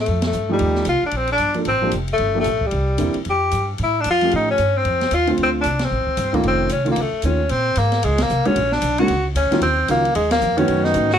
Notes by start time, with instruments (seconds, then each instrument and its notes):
0.01 tenor saxophone A3
0.06 upright bass F2, ride
0.22 snare, ride
0.27 tenor saxophone A3
0.33 upright bass G2, hi-hat pedal
0.49 grand piano F3 A3 D#4 G4, tenor saxophone G3
0.59 upright bass D#2, ride
0.75 snare
0.85 upright bass C2, hi-hat pedal, ride
0.89 tenor saxophone F4
1.02 tenor saxophone D4, muted upright bass stroke
1.11 upright bass A#1, ride
1.17 tenor saxophone C4
1.27 ride
1.32 tenor saxophone D4
1.38 upright bass G1, hi-hat pedal, ride
1.54 grand piano F3 A#3 D4 A4, ride
1.65 upright bass A1, tenor saxophone C4, ride
1.82 grand piano F3 A#3 D4 G4
1.91 upright bass F1, hi-hat pedal, ride
2.08 ride
2.13 tenor saxophone A3
2.18 upright bass G1, ride
2.35 grand piano F3 A#3 D4 G4
2.40 tenor saxophone A3
2.44 upright bass A#1, hi-hat pedal, ride
2.61 kick
2.66 tenor saxophone G3
2.71 upright bass C2, ride
2.98 upright bass E2, grand piano D3 A#3 C4 E4, hi-hat pedal, ride
3.14 muted upright bass stroke, ride
3.25 upright bass F2, ride
3.30 tenor saxophone G4
3.51 upright bass G2, hi-hat pedal, ride
3.78 upright bass A2, ride
3.83 tenor saxophone E4
4.01 tenor saxophone D4, hi-hat pedal, ride
4.06 upright bass F2
4.10 tenor saxophone F4
4.21 grand piano F3 A3 C#4 G4, ride
4.31 upright bass A2, tenor saxophone D#4, ride
4.51 tenor saxophone C#4
4.58 upright bass G2, hi-hat pedal, ride
4.78 tenor saxophone C4
4.85 upright bass F2, ride
5.01 snare, ride
5.11 upright bass D#2, tenor saxophone F4, hi-hat pedal, ride
5.27 grand piano D3 A3 C4 F4, ride
5.38 upright bass D2, ride
5.43 tenor saxophone C4
5.61 tenor saxophone D4, hi-hat pedal, ride
5.65 upright bass C2
5.79 snare, ride
5.85 tenor saxophone C4
5.91 upright bass A1
6.07 muted upright bass stroke, kick
6.17 upright bass G1, hi-hat pedal, ride
6.33 grand piano D#3 A3 C#4 F4, tenor saxophone A#3, kick, ride
6.43 upright bass F1, tenor saxophone C4, ride
6.69 upright bass C2, tenor saxophone C#4, hi-hat pedal, ride
6.85 grand piano D#3 A3 C#4 F4, ride
6.91 tenor saxophone A#3
6.96 upright bass C#2, ride
7.01 tenor saxophone A3
7.13 muted upright bass stroke
7.22 upright bass D#2, grand piano D#3 A3 C#4 F4, tenor saxophone C#4, hi-hat pedal, ride
7.49 upright bass A#2, tenor saxophone C4, ride
7.76 upright bass G#2, tenor saxophone A#3, hi-hat pedal, ride
7.92 snare, ride
8.03 upright bass C#2, tenor saxophone G#3, ride
8.18 tenor saxophone A#3, snare, ride
8.29 upright bass C2, hi-hat pedal
8.45 grand piano D3 G#3 A#3 C#4 F#4, tenor saxophone C#4, muted upright bass stroke, ride
8.56 upright bass A#1, ride
8.72 tenor saxophone D4, snare
8.82 upright bass B1, hi-hat pedal, ride
8.98 grand piano D3 G#3 A#3 C#4 F#4, tenor saxophone F#4, ride
9.08 upright bass C#2, ride
9.35 upright bass D2, tenor saxophone C#4, hi-hat pedal, ride
9.51 grand piano D#3 F#3 A#3 C#4 F4, muted upright bass stroke, snare, ride
9.61 upright bass D#2, tenor saxophone C4, ride
9.88 upright bass C#2, grand piano D#3 F#3 A#3 C#4 F4, tenor saxophone A#3, hi-hat pedal, ride
10.05 ride
10.15 upright bass D#2, tenor saxophone G#3, ride
10.31 tenor saxophone A#3, snare, ride
10.41 upright bass F2, hi-hat pedal
10.57 grand piano D#3 A3 B3 C#4 F#4, tenor saxophone C#4, ride
10.68 upright bass F#2, ride
10.84 tenor saxophone D#4, snare
10.94 upright bass G#2, grand piano D#3 A3 B3 C#4 F#4, hi-hat pedal, ride
11.10 tenor saxophone F#4, snare